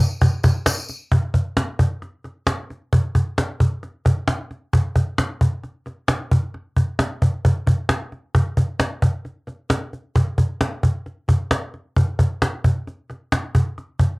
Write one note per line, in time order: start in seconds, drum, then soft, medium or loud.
0.21 cajon bass loud
0.21 tambourine soft
0.43 cajon bass loud
0.43 cajon slap soft
0.43 tambourine medium
0.66 cajon slap loud
0.66 tambourine medium
0.88 cajon slap soft
0.88 tambourine medium
1.12 cajon bass loud
1.34 cajon bass medium
1.57 cajon slap loud
1.79 cajon bass medium
2.02 cajon slap soft
2.24 cajon slap soft
2.47 cajon slap loud
2.70 cajon slap soft
2.93 cajon bass medium
3.15 cajon bass medium
3.38 cajon slap medium
3.60 cajon bass medium
3.83 cajon slap soft
4.05 cajon bass medium
4.05 cajon slap soft
4.28 cajon slap medium
4.51 cajon slap soft
4.73 cajon bass medium
4.96 cajon bass medium
5.18 cajon slap medium
5.41 cajon bass medium
5.64 cajon slap soft
5.86 cajon slap soft
6.08 cajon slap loud
6.31 cajon bass medium
6.54 cajon slap soft
6.76 cajon bass medium
6.99 cajon slap medium
7.22 cajon bass medium
7.45 cajon bass medium
7.67 cajon bass medium
7.67 cajon slap soft
7.89 cajon slap loud
8.12 cajon slap soft
8.35 cajon bass loud
8.57 cajon bass medium
8.80 cajon slap medium
9.02 cajon bass medium
9.25 cajon slap soft
9.47 cajon slap soft
9.70 cajon slap loud
9.93 cajon slap soft
10.16 cajon bass medium
10.38 cajon bass medium
10.61 cajon slap loud
10.83 cajon bass medium
11.06 cajon slap soft
11.28 cajon bass medium
11.28 cajon slap soft
11.51 cajon slap loud
11.74 cajon slap soft
11.96 cajon bass loud
12.19 cajon bass medium
12.42 cajon slap medium
12.64 cajon bass medium
12.87 cajon slap soft
13.10 cajon slap soft
13.32 cajon slap loud
13.55 cajon bass medium
13.78 cajon slap soft
13.99 cajon bass medium